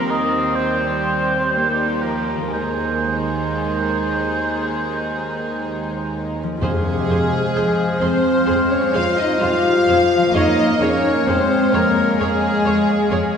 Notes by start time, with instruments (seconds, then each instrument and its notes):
Already playing: cello section D#2, harp D#3 G3 D#4 A#4, viola section C4, violin section G4, oboe A#4
0.08 viola section D#3, oboe D#5
0.56 viola section G3, violin section G4, oboe C5
1.52 viola section G3 A#3, violin section D#4 G4
2.02 viola section F3, oboe A#4
2.35 harp D#3
2.44 harp D#4
2.48 cello section D#2, harp G#5
2.52 viola section D#3 G#3, violin section D#4 G#4, oboe C5
6.43 harp F3
6.52 harp C4
6.57 double bass section F2, french horn section G#3, harp F4, violin section G#4
6.61 timpani F2, cello section C3, flute section G#4, violin section G#4, viola section G#4 C5, clarinet C5, oboe F5
7.08 double bass section F2, viola section G#4 C5
7.55 double bass section F2, cello section F3, viola section G#4 C5
8.00 double bass section F2, french horn section C4, viola section G#4 C5, violin section C5, flute section C5
8.47 double bass section F2, cello section G#3, viola section G#4 C5
8.70 french horn section C#4, flute section C#5, violin section C#5
8.94 double bass section F2, french horn section F4, viola section G#4 C5, violin section F5, flute section F5
9.18 french horn section D#4, flute section D#5, violin section D#5
9.40 double bass section F2, cello section G3, french horn section F4, viola section F4 C5, flute section F5, violin section F5
9.88 double bass section F2, cello section F3, viola section G#4 C5
10.17 harp F3
10.22 harp G#3
10.27 harp C#4
10.31 double bass section F2, cello section A#3, french horn section D#4, harp F4, viola section G#4 C#5, flute section D#5, violin section D#5
10.35 clarinet C#5, oboe F5
10.80 double bass section F2, french horn section C#4, viola section G#4 C#5, flute section C#5, violin section C#5
11.26 double bass section F2, cello section G#3, french horn section C4, viola section C#4 G#4, flute section C5, violin section C5
11.72 double bass section F2, french horn section A#3, viola section G#4 C#5, flute section A#4, violin section A#4
12.19 double bass section F2, french horn section G#3, violin section G#4, flute section G#4, viola section G#4 C#5
12.66 double bass section F2, viola section G#4 C#5
13.11 double bass section F2, viola section G#4 C#5